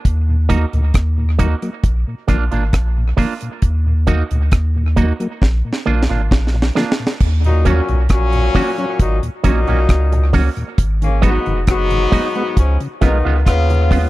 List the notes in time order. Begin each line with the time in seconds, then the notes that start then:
0.05 D#2, kick, closed hi-hat
0.29 D#2 A#2
0.49 D#3 F#3 A#3 D#4 F#4, kick, closed hi-hat
0.73 D2 D#2 A#2, closed hi-hat
0.94 D#2, kick, cross-stick, closed hi-hat
1.18 D#2 A#2
1.39 D#3 F#3 A#3 D#4 F#4, kick, closed hi-hat
1.62 F#3 A#3, closed hi-hat
1.84 A#1, kick, closed hi-hat
2.08 A#2
2.28 A#1 D3 F3 A#3 D4 F4, kick, cross-stick, closed hi-hat
2.51 G#1 A#2 A#3 D4 F4, closed hi-hat
2.73 A#1, kick, cross-stick, closed hi-hat
2.97 A#2
3.17 D3 F3 A#3 D4 F4, kick, open hi-hat
3.41 A#2, closed hi-hat
3.62 D#2, kick, closed hi-hat
3.86 D#2 A#2
4.07 D#3 F#3 A#3 D#4 F#4, kick, closed hi-hat
4.31 D2 D#2 A#2, closed hi-hat
4.52 D#2, kick, cross-stick, closed hi-hat
4.76 D#2 A#2
4.96 D#3 F#3 A#3 D#4 F#4, kick, closed hi-hat
5.20 F#3 A#3, closed hi-hat
5.42 A#1, kick, snare
5.65 A#2
5.73 snare
5.86 A#1 D3 F3 A#3 D4 F4
6.03 snare
6.09 G#1 A#2 A#3 D4 F4
6.31 A#1, kick, snare
6.47 snare
6.54 A#2, muted clean electric guitar stroke
6.62 snare
6.75 D3 F3 A#3 D4 F4, snare
6.92 snare
7.00 A#2
7.07 snare
7.20 D#2, kick, crash
7.44 D#2 A#2 F#3 D#4, closed hi-hat
7.65 A#2 D#3 F#3 A#3 C#4 F#4, kick, closed hi-hat
7.89 B1 D#2 A#2, closed hi-hat
8.09 A#1 A#2 F#3 C#4, kick, cross-stick, closed hi-hat
8.33 D#2 A#2, closed hi-hat
8.55 D#3 F#3 A#3 C#4 F#4, kick, open hi-hat
8.78 F#3 C#4, closed hi-hat
8.99 G#1 A#2 F#3 D#4, kick, closed hi-hat
9.23 D#2 A#2, closed hi-hat
9.44 A#1 A#2 D#3 F#3 A#3 C#4 D#4 F#4, kick, closed hi-hat
9.67 B1 D#2 A#2 A#3 C#4 F#4, closed hi-hat
9.89 C#2, kick, cross-stick, closed hi-hat
10.12 D#2 A#2, muted clean electric guitar stroke, closed hi-hat
10.33 D#3 F#3 A#3 C#4 F#4, kick, open hi-hat
10.56 D#2 A#2, closed hi-hat
10.78 G#1, kick, closed hi-hat
11.02 G#2 C#3 D#3 A#3 C#4, closed hi-hat
11.22 G#2 F#3 G#3 B3 D#4 F#4, kick, closed hi-hat
11.46 F1 G#2 D#3, closed hi-hat
11.67 F#1 G#2 F#3 B3, kick, cross-stick, closed hi-hat
11.91 G#2 D#3, closed hi-hat
12.12 F#3 G#3 B3 D#4 F#4, kick, open hi-hat
12.35 G#3 B3, closed hi-hat
12.56 C#2 G#2 F3 C#4, kick, closed hi-hat
12.80 C#3, closed hi-hat
13.01 B1 D#3 F3 G#3 B3 C#4 D#4 F4, kick, cross-stick, closed hi-hat
13.25 C#2 C#3 G#3 B3 F4
13.45 D#2 C#3 B3 F4, kick, cross-stick, closed hi-hat
13.70 C#3, muted clean electric guitar stroke, closed hi-hat
13.90 F3 G#3 B3 C#4 F4, kick, open hi-hat